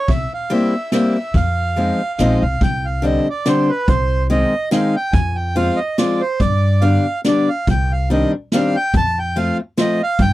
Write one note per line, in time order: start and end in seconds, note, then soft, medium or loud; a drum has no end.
0.00 0.10 C#5 medium
0.08 0.24 C2 medium
0.08 0.33 E5 medium
0.08 kick medium
0.08 ride soft
0.34 0.53 F5 medium
0.50 0.73 G3 medium
0.50 0.74 A#3 medium
0.50 0.74 C4 medium
0.50 0.74 E4 medium
0.50 0.91 E5 medium
0.50 ride soft
0.92 1.16 G3 medium
0.92 1.16 A#3 medium
0.92 1.16 C4 medium
0.92 1.16 E4 medium
0.92 1.36 E5 medium
0.92 snare soft
0.92 ride soft
1.15 ride soft
1.34 1.89 F2 medium
1.34 2.39 F5 medium
1.34 kick medium
1.34 ride soft
1.76 2.00 F3 medium
1.76 2.00 G#3 medium
1.76 2.00 C4 soft
1.76 2.00 D#4 medium
1.76 ride soft
2.18 2.40 A#1 medium
2.18 2.43 F3 medium
2.18 2.43 G#3 medium
2.18 2.43 C4 medium
2.18 2.43 D#4 medium
2.18 2.43 D#5 medium
2.18 snare soft
2.18 ride soft
2.42 2.60 C2 medium
2.42 2.62 F5 medium
2.61 3.16 C2 medium
2.61 2.86 G5 medium
2.61 kick medium
2.61 closed hi-hat soft
2.85 3.05 F5 medium
3.02 3.26 D3 medium
3.02 3.26 G3 soft
3.02 3.26 C4 soft
3.02 3.26 D4 medium
3.02 3.28 D#5 medium
3.02 closed hi-hat medium
3.30 3.48 D5 medium
3.45 3.69 D3 medium
3.45 3.69 G3 medium
3.45 3.69 C4 medium
3.45 3.69 D4 medium
3.45 3.71 C5 medium
3.45 snare medium
3.45 closed hi-hat soft
3.69 3.89 B4 medium
3.88 4.42 C2 medium
3.88 4.27 C5 medium
3.88 kick medium
3.88 closed hi-hat soft
4.30 4.53 D#3 medium
4.30 4.53 G#3 medium
4.30 4.53 C4 medium
4.30 4.53 D#4 medium
4.30 4.69 D#5 medium
4.30 closed hi-hat soft
4.71 4.94 D#3 medium
4.71 4.95 G#3 medium
4.71 4.95 C4 soft
4.71 4.95 D#4 medium
4.71 4.96 F5 medium
4.71 snare medium
4.71 closed hi-hat soft
4.96 5.13 G5 medium
5.12 5.68 F2 medium
5.12 5.37 G#5 loud
5.12 kick medium
5.12 closed hi-hat soft
5.36 5.56 G5 medium
5.56 5.78 F3 medium
5.56 5.79 G#3 medium
5.56 5.79 C4 medium
5.56 5.79 F4 medium
5.56 5.80 F5 loud
5.56 closed hi-hat medium
5.77 5.97 D#5 medium
5.98 6.21 F3 medium
5.98 6.21 G#3 medium
5.98 6.21 C4 medium
5.98 6.21 F4 medium
5.98 6.22 D5 medium
5.98 snare medium
5.98 closed hi-hat soft
6.21 6.41 C5 medium
6.40 6.95 G2 medium
6.40 6.84 D5 medium
6.40 kick medium
6.40 closed hi-hat soft
6.82 7.05 D3 medium
6.82 7.05 G3 soft
6.82 7.05 B3 soft
6.82 7.05 D4 medium
6.82 7.21 F5 medium
6.82 closed hi-hat medium
7.24 7.48 D3 medium
7.24 7.48 G3 medium
7.24 7.48 B3 soft
7.24 7.48 D4 medium
7.24 7.49 D5 medium
7.24 snare medium
7.24 closed hi-hat soft
7.49 7.68 F5 medium
7.67 8.22 C2 medium
7.67 7.92 G5 medium
7.67 kick medium
7.67 closed hi-hat soft
7.92 8.09 F5 medium
8.10 8.33 D#3 medium
8.10 8.33 G3 medium
8.10 8.33 C4 soft
8.10 8.33 D4 medium
8.10 8.32 D#5 medium
8.10 closed hi-hat soft
8.52 8.75 D#3 medium
8.52 8.76 G3 medium
8.52 8.76 C4 medium
8.52 8.75 D4 medium
8.52 8.76 F5 medium
8.52 snare medium
8.52 closed hi-hat soft
8.76 8.95 G5 loud
8.93 9.48 F2 medium
8.93 9.19 A5 loud
8.93 kick medium
8.93 closed hi-hat soft
9.19 9.37 G5 medium
9.36 9.59 F3 medium
9.36 9.59 A3 medium
9.36 9.59 C4 soft
9.36 9.59 F4 medium
9.36 9.57 F5 medium
9.36 closed hi-hat medium
9.77 10.00 F3 medium
9.77 10.00 A3 medium
9.77 10.00 C4 medium
9.77 10.00 F4 medium
9.77 10.02 D#5 medium
9.77 snare medium
9.77 closed hi-hat soft
10.03 10.21 F5 loud
10.19 10.33 G2 loud
10.19 10.33 G5 loud
10.19 kick medium
10.19 closed hi-hat soft